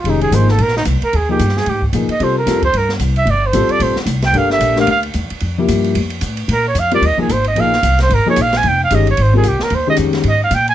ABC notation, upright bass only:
X:1
M:4/4
L:1/8
Q:"Swing" 1/4=224
K:Cphr
V:1 name="Upright bass" clef=bass
F,,,2 A,,,2 B,,,2 C,, z | E,,2 G,,2 A,,2 B,, z | C,2 F,,2 G,,2 C,,2 | G,,,2 =A,,, z B,,, z C,,2 |
G,,,2 B,,,2 =D,,2 =E,, z | F,,2 G,,2 F,,2 =A,,2 | B,,2 F,,2 E,, z A,,,2 | B,,,2 C,,2 A,,, z B,,,2 |
F,,,2 G,,,2 A,,,2 C,, z | E,,2 F,,2 A,,2 B,,2 |]